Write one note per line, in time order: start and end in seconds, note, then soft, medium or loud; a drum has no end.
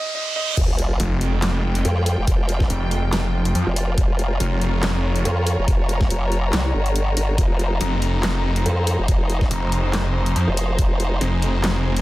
0.00 0.13 D#5 loud
0.00 reverse cymbal medium
0.00 riser medium
0.15 0.34 D#5 loud
0.36 0.56 D#5 loud
0.57 0.98 F1 medium
0.57 7.34 F3 medium
0.57 3.94 F4 medium
0.57 8.75 F4 medium
0.57 3.94 G4 medium
0.57 3.94 G#4 medium
0.57 3.94 C5 medium
0.57 kick loud
0.57 closed hi-hat medium
0.57 crash loud
0.57 sub drop medium
0.72 4.51 G#3 medium
0.79 closed hi-hat medium
1.00 1.83 F1 loud
1.00 closed hi-hat medium
1.17 4.59 G5 medium
1.21 closed hi-hat medium
1.42 snare loud
1.42 clap medium
1.42 closed hi-hat medium
1.75 closed hi-hat medium
1.85 2.16 F2 loud
1.85 closed hi-hat medium
2.06 open hi-hat medium
2.18 2.26 F1 loud
2.27 2.69 F1 loud
2.27 kick loud
2.27 closed hi-hat medium
2.49 closed hi-hat medium
2.60 kick loud
2.60 snare soft
2.70 3.54 F1 loud
2.70 closed hi-hat medium
2.91 closed hi-hat medium
3.13 snare loud
3.13 clap medium
3.13 closed hi-hat medium
3.45 closed hi-hat medium
3.55 3.65 F2 loud
3.55 closed hi-hat medium
3.67 3.96 F1 loud
3.76 open hi-hat medium
3.98 4.39 F1 loud
3.98 7.35 F4 medium
3.98 10.75 A#4 medium
3.98 7.35 C#5 medium
3.98 7.35 F5 medium
3.98 kick loud
3.98 closed hi-hat medium
4.08 7.38 C#5 medium
4.17 12.02 A#5 medium
4.17 closed hi-hat medium
4.40 5.24 F1 loud
4.40 closed hi-hat medium
4.62 closed hi-hat medium
4.83 snare loud
4.83 clap medium
4.83 closed hi-hat medium
5.16 closed hi-hat medium
5.25 5.56 F2 loud
5.25 closed hi-hat medium
5.47 open hi-hat medium
5.58 5.66 F1 medium
5.68 6.09 F1 loud
5.68 kick loud
5.68 closed hi-hat medium
5.89 closed hi-hat medium
6.01 kick loud
6.01 snare soft
6.10 6.51 F1 loud
6.10 closed hi-hat medium
6.32 closed hi-hat soft
6.53 6.73 C2 loud
6.53 snare loud
6.53 clap medium
6.53 closed hi-hat medium
6.74 7.15 G1 loud
6.86 closed hi-hat soft
6.96 closed hi-hat medium
7.17 7.37 G1 medium
7.17 open hi-hat medium
7.38 7.79 F1 medium
7.38 12.02 F3 medium
7.38 12.02 D#4 medium
7.38 12.02 F4 medium
7.38 10.75 G4 medium
7.38 12.02 D#5 medium
7.38 kick loud
7.38 closed hi-hat medium
7.51 12.02 C5 medium
7.59 closed hi-hat soft
7.81 8.64 F1 loud
7.81 closed hi-hat medium
8.02 closed hi-hat soft
8.23 snare loud
8.23 clap medium
8.23 closed hi-hat medium
8.56 closed hi-hat soft
8.66 8.97 F2 loud
8.66 closed hi-hat medium
8.87 open hi-hat medium
8.99 9.07 F1 medium
9.08 9.49 F1 medium
9.08 kick loud
9.08 closed hi-hat medium
9.30 closed hi-hat medium
9.41 kick loud
9.41 snare soft
9.51 10.34 F1 loud
9.51 closed hi-hat medium
9.72 closed hi-hat medium
9.93 snare loud
9.93 clap medium
9.93 closed hi-hat medium
10.26 closed hi-hat soft
10.36 10.46 F2 loud
10.36 closed hi-hat medium
10.48 10.77 F1 loud
10.57 open hi-hat loud
10.79 11.20 F1 loud
10.79 12.02 G#4 medium
10.79 12.02 C5 medium
10.79 kick loud
10.79 closed hi-hat medium
11.00 closed hi-hat medium
11.21 12.02 F1 loud
11.21 closed hi-hat medium
11.29 12.02 G#5 medium
11.42 closed hi-hat medium
11.64 snare loud
11.64 clap medium
11.64 closed hi-hat medium
11.97 closed hi-hat medium